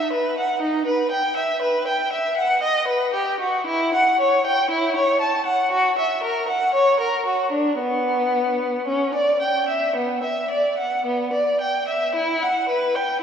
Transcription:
0.00 0.12 E5 medium
0.13 0.37 B4 medium
0.38 0.62 F#5 medium
0.61 0.86 D#4 medium
0.86 1.11 B4 medium
1.11 1.36 G5 medium
1.36 1.62 E5 medium
1.62 1.87 B4 medium
1.87 2.12 G5 medium
2.12 2.37 E5 medium
2.37 2.62 F#5 medium
2.62 2.88 D#5 medium
2.87 3.13 B4 medium
3.14 3.40 G4 medium
3.40 3.67 F#4 medium
3.66 3.93 E4 medium
3.94 4.19 F#5 medium
4.20 4.45 C#5 medium
4.46 4.70 G5 medium
4.70 4.95 E4 medium
4.96 5.20 C#5 medium
5.21 5.46 A5 medium
5.46 5.71 F#5 medium
5.71 5.96 F#4 medium
5.98 6.22 E5 medium
6.23 6.47 A#4 medium
6.48 6.73 F#5 medium
6.73 6.99 C#5 medium
7.00 7.25 A#4 medium
7.26 7.51 F#4 soft
7.52 7.78 D4 soft
7.78 8.85 B3 medium
8.87 9.14 C#4 soft
9.14 9.41 D5 medium
9.41 9.68 G5 soft
9.68 9.95 E5 medium
9.96 10.23 B3 soft
10.23 10.50 E5 soft
10.51 10.78 D5 soft
10.78 11.05 F#5 soft
11.05 11.32 B3 soft
11.33 11.60 D5 soft
11.61 11.88 G5 soft
11.88 12.14 E5 soft
12.15 12.41 E4 medium
12.42 12.68 F#5 medium
12.69 12.94 B4 soft
12.96 13.21 G5 medium

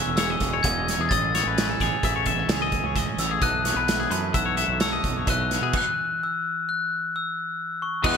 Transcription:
0.00 0.64 E2 medium
0.00 1.11 B2 medium
0.00 1.81 E3 medium
0.00 0.41 G#3 medium
0.00 0.65 C#4 medium
0.00 0.17 G#4 medium
0.00 0.18 E5 medium
0.00 0.16 E6 medium
0.06 0.36 E1 medium
0.17 1.08 G#4 medium
0.17 0.30 C#5 medium
0.17 0.65 E6 medium
0.17 snare medium
0.17 closed hi-hat loud
0.30 0.53 D#5 medium
0.40 0.60 E1 medium
0.40 0.88 G#3 medium
0.40 kick medium
0.40 snare soft
0.40 closed hi-hat medium
0.53 0.66 C#5 medium
0.63 0.94 E1 loud
0.63 1.11 E2 medium
0.63 1.09 C#4 medium
0.63 0.90 D#5 medium
0.63 1.12 G#6 loud
0.63 kick loud
0.63 closed hi-hat loud
0.88 1.35 G#3 medium
0.88 1.01 C#5 medium
0.88 snare soft
0.88 closed hi-hat medium
0.98 1.09 E2 medium
0.98 1.12 G#4 medium
1.09 1.40 A1 medium
1.09 2.95 A2 medium
1.09 1.58 C#4 soft
1.09 1.35 D#5 medium
1.09 2.45 A6 medium
1.09 kick loud
1.09 closed hi-hat loud
1.35 2.04 G#3 medium
1.35 1.47 C#5 medium
1.35 snare soft
1.35 closed hi-hat medium
1.46 1.75 A1 medium
1.46 1.70 B4 medium
1.58 2.27 C#4 soft
1.58 snare loud
1.58 closed hi-hat medium
1.70 1.81 A4 medium
1.80 1.90 A1 medium
1.80 2.27 E3 medium
1.80 2.49 G#4 medium
1.80 2.04 C#5 medium
1.80 kick medium
1.80 snare soft
1.80 closed hi-hat medium
2.03 2.33 A1 medium
2.03 2.72 G#3 medium
2.03 2.15 E5 medium
2.03 kick loud
2.03 snare soft
2.03 closed hi-hat medium
2.16 2.26 C#5 medium
2.26 3.42 E3 medium
2.26 2.39 B3 medium
2.26 2.50 E5 medium
2.26 kick medium
2.26 closed hi-hat medium
2.36 2.47 A1 medium
2.36 2.96 C#4 soft
2.48 2.78 C#2 medium
2.48 3.40 G#4 medium
2.48 2.61 C#5 medium
2.48 snare loud
2.48 closed hi-hat medium
2.62 2.86 D#5 medium
2.72 3.18 G#3 medium
2.72 kick medium
2.72 closed hi-hat medium
2.83 3.04 C#2 medium
2.83 2.96 C#5 medium
2.96 3.40 A2 medium
2.96 3.40 C#4 medium
2.96 3.20 D#5 medium
2.96 kick medium
2.96 snare soft
2.96 closed hi-hat medium
3.17 3.38 A1 loud
3.17 3.43 G#3 medium
3.17 3.32 C#5 medium
3.17 3.43 E6 medium
3.17 snare soft
3.17 closed hi-hat medium
3.31 3.43 G#4 medium
3.42 3.71 B1 medium
3.42 4.12 B2 medium
3.42 4.10 E3 medium
3.42 3.64 B3 soft
3.42 3.87 E4 medium
3.42 4.10 A4 medium
3.42 3.66 D#5 medium
3.42 4.08 F#6 loud
3.42 kick loud
3.42 closed hi-hat medium
3.65 4.33 B3 medium
3.65 3.77 C#5 medium
3.65 snare soft
3.65 closed hi-hat medium
3.76 4.06 B1 medium
3.76 3.99 B4 medium
3.88 4.56 E4 medium
3.88 snare loud
3.88 closed hi-hat medium
4.00 4.11 G#4 medium
4.11 4.31 F#2 medium
4.11 8.04 E3 medium
4.11 4.80 A4 medium
4.11 4.35 B4 medium
4.11 closed hi-hat medium
4.34 4.64 B1 medium
4.34 5.03 B3 medium
4.34 4.45 E5 medium
4.34 4.80 E6 medium
4.34 kick medium
4.34 closed hi-hat medium
4.46 4.57 C#5 medium
4.57 5.27 F#2 medium
4.57 5.27 E4 medium
4.57 4.81 E5 medium
4.57 closed hi-hat medium
4.68 4.98 B1 medium
4.80 5.71 A4 medium
4.80 4.92 C#5 medium
4.80 5.29 E6 loud
4.80 snare loud
4.80 closed hi-hat medium
4.92 5.17 D#5 medium
5.03 5.24 B1 medium
5.03 5.50 B3 medium
5.03 kick medium
5.03 closed hi-hat medium
5.17 5.28 C#5 medium
5.27 5.57 B1 loud
5.27 5.74 B2 medium
5.27 5.72 E4 medium
5.27 5.51 D#5 medium
5.27 5.76 F#6 loud
5.27 kick loud
5.27 closed hi-hat loud
5.51 5.71 B3 medium
5.51 5.63 C#5 medium
5.51 snare soft
5.51 closed hi-hat medium
5.61 5.72 B2 medium
5.61 5.74 G#4 medium
5.73 kick loud
5.73 crash loud
5.77 6.19 F#6 loud
6.23 6.69 E6 medium
6.69 7.15 F#6 medium
7.16 7.57 E6 medium
7.82 8.06 C#6 medium
8.04 8.17 E2 loud
8.04 8.17 E3 medium
8.04 8.17 G#3 loud
8.04 8.17 B3 loud
8.04 8.17 E4 loud
8.04 8.17 D#5 medium
8.04 8.17 F#6 loud
8.04 kick loud
8.04 crash loud

